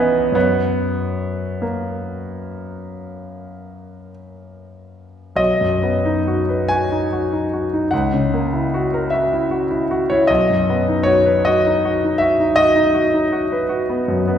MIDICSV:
0, 0, Header, 1, 2, 480
1, 0, Start_track
1, 0, Key_signature, 5, "major"
1, 0, Tempo, 847458
1, 197, Time_signature, 12, 3, 24, 8
1, 1160, Tempo, 825309
1, 2600, Tempo, 868307
1, 4040, Tempo, 789474
1, 6440, Tempo, 752823
1, 8547, End_track
2, 0, Start_track
2, 0, Title_t, "Grand piano"
2, 0, Program_c, 0, 0
2, 0, Control_c, 0, 64, 127
2, 0, Note_on_c, 0, 59, 74
2, 0, Note_on_c, 0, 61, 71
2, 0, Note_on_c, 0, 63, 88
2, 0, Note_on_c, 0, 71, 45
2, 0, Note_on_c, 0, 75, 47
2, 0, Note_on_c, 0, 80, 48
2, 177, Note_off_c, 0, 71, 0
2, 178, Note_off_c, 0, 80, 0
2, 179, Note_off_c, 0, 75, 0
2, 182, Note_on_c, 0, 42, 47
2, 189, Note_on_c, 0, 66, 38
2, 190, Note_off_c, 0, 59, 0
2, 198, Note_on_c, 0, 73, 43
2, 199, Note_on_c, 0, 59, 75
2, 205, Note_on_c, 0, 78, 38
2, 208, Control_c, 0, 64, 0
2, 214, Note_off_c, 0, 61, 0
2, 214, Note_off_c, 0, 63, 0
2, 326, Control_c, 0, 64, 127
2, 916, Note_on_c, 0, 58, 53
2, 923, Note_off_c, 0, 59, 0
2, 2353, Note_off_c, 0, 58, 0
2, 3049, Note_off_c, 0, 42, 0
2, 3052, Note_off_c, 0, 66, 0
2, 3057, Note_off_c, 0, 73, 0
2, 3060, Note_off_c, 0, 78, 0
2, 3060, Note_on_c, 0, 35, 51
2, 3064, Note_on_c, 0, 75, 77
2, 3087, Control_c, 0, 64, 0
2, 3199, Note_on_c, 0, 42, 45
2, 3205, Control_c, 0, 64, 127
2, 3321, Note_on_c, 0, 59, 44
2, 3396, Note_off_c, 0, 42, 0
2, 3446, Note_on_c, 0, 63, 51
2, 3521, Note_off_c, 0, 59, 0
2, 3567, Note_on_c, 0, 66, 47
2, 3647, Note_off_c, 0, 63, 0
2, 3687, Note_on_c, 0, 71, 42
2, 3765, Note_off_c, 0, 66, 0
2, 3794, Note_on_c, 0, 80, 86
2, 3807, Note_off_c, 0, 75, 0
2, 3809, Note_on_c, 0, 66, 48
2, 3879, Note_off_c, 0, 71, 0
2, 3924, Note_on_c, 0, 63, 45
2, 3994, Note_off_c, 0, 66, 0
2, 4038, Note_on_c, 0, 66, 51
2, 4109, Note_off_c, 0, 63, 0
2, 4162, Note_on_c, 0, 63, 40
2, 4231, Note_off_c, 0, 66, 0
2, 4286, Note_on_c, 0, 66, 40
2, 4352, Note_off_c, 0, 63, 0
2, 4409, Note_on_c, 0, 63, 50
2, 4476, Note_off_c, 0, 66, 0
2, 4487, Note_off_c, 0, 35, 0
2, 4511, Note_off_c, 0, 80, 0
2, 4513, Note_on_c, 0, 78, 69
2, 4526, Note_off_c, 0, 63, 0
2, 4529, Note_on_c, 0, 37, 59
2, 4532, Control_c, 0, 64, 0
2, 4622, Control_c, 0, 64, 127
2, 4654, Note_on_c, 0, 49, 44
2, 4775, Note_on_c, 0, 58, 42
2, 4844, Note_off_c, 0, 49, 0
2, 4894, Note_on_c, 0, 64, 42
2, 4965, Note_off_c, 0, 58, 0
2, 5021, Note_on_c, 0, 66, 52
2, 5084, Note_off_c, 0, 64, 0
2, 5140, Note_on_c, 0, 70, 51
2, 5206, Note_off_c, 0, 66, 0
2, 5240, Note_on_c, 0, 76, 70
2, 5244, Note_off_c, 0, 78, 0
2, 5259, Note_on_c, 0, 66, 47
2, 5325, Note_off_c, 0, 70, 0
2, 5378, Note_on_c, 0, 64, 52
2, 5444, Note_off_c, 0, 66, 0
2, 5487, Note_on_c, 0, 66, 52
2, 5563, Note_off_c, 0, 64, 0
2, 5608, Note_on_c, 0, 64, 48
2, 5677, Note_off_c, 0, 66, 0
2, 5730, Note_on_c, 0, 66, 57
2, 5798, Note_off_c, 0, 64, 0
2, 5841, Note_off_c, 0, 76, 0
2, 5844, Note_on_c, 0, 73, 74
2, 5856, Note_on_c, 0, 64, 55
2, 5920, Note_off_c, 0, 66, 0
2, 5944, Note_off_c, 0, 37, 0
2, 5952, Note_on_c, 0, 75, 85
2, 5964, Note_off_c, 0, 73, 0
2, 5969, Note_on_c, 0, 35, 65
2, 5970, Note_off_c, 0, 64, 0
2, 5974, Control_c, 0, 64, 0
2, 6089, Control_c, 0, 64, 127
2, 6089, Note_on_c, 0, 42, 43
2, 6208, Note_on_c, 0, 59, 48
2, 6277, Note_off_c, 0, 42, 0
2, 6323, Note_on_c, 0, 63, 49
2, 6394, Note_off_c, 0, 59, 0
2, 6414, Note_on_c, 0, 73, 84
2, 6433, Note_off_c, 0, 75, 0
2, 6434, Note_on_c, 0, 66, 52
2, 6513, Note_off_c, 0, 63, 0
2, 6556, Note_on_c, 0, 71, 51
2, 6631, Note_off_c, 0, 66, 0
2, 6670, Note_off_c, 0, 73, 0
2, 6677, Note_on_c, 0, 75, 79
2, 6692, Note_on_c, 0, 66, 57
2, 6753, Note_off_c, 0, 71, 0
2, 6814, Note_on_c, 0, 63, 51
2, 6882, Note_off_c, 0, 66, 0
2, 6933, Note_on_c, 0, 66, 55
2, 7004, Note_off_c, 0, 63, 0
2, 7057, Note_on_c, 0, 63, 44
2, 7123, Note_off_c, 0, 66, 0
2, 7145, Note_on_c, 0, 76, 83
2, 7164, Note_off_c, 0, 75, 0
2, 7166, Note_on_c, 0, 66, 50
2, 7242, Note_off_c, 0, 63, 0
2, 7284, Note_on_c, 0, 63, 46
2, 7355, Note_off_c, 0, 66, 0
2, 7384, Note_on_c, 0, 75, 97
2, 7390, Note_off_c, 0, 76, 0
2, 7401, Note_on_c, 0, 66, 55
2, 7471, Note_off_c, 0, 63, 0
2, 7511, Note_on_c, 0, 63, 54
2, 7589, Note_off_c, 0, 66, 0
2, 7630, Note_on_c, 0, 66, 51
2, 7704, Note_off_c, 0, 63, 0
2, 7754, Note_on_c, 0, 63, 47
2, 7823, Note_off_c, 0, 66, 0
2, 7873, Note_on_c, 0, 66, 53
2, 7946, Note_off_c, 0, 63, 0
2, 7999, Note_on_c, 0, 71, 52
2, 8065, Note_off_c, 0, 66, 0
2, 8108, Note_on_c, 0, 66, 53
2, 8188, Note_off_c, 0, 71, 0
2, 8237, Note_on_c, 0, 59, 52
2, 8304, Note_off_c, 0, 66, 0
2, 8355, Note_on_c, 0, 42, 53
2, 8430, Note_off_c, 0, 59, 0
2, 8480, Note_on_c, 0, 59, 53
2, 8547, Note_off_c, 0, 35, 0
2, 8547, Note_off_c, 0, 42, 0
2, 8547, Note_off_c, 0, 59, 0
2, 8547, Note_off_c, 0, 75, 0
2, 8547, End_track
0, 0, End_of_file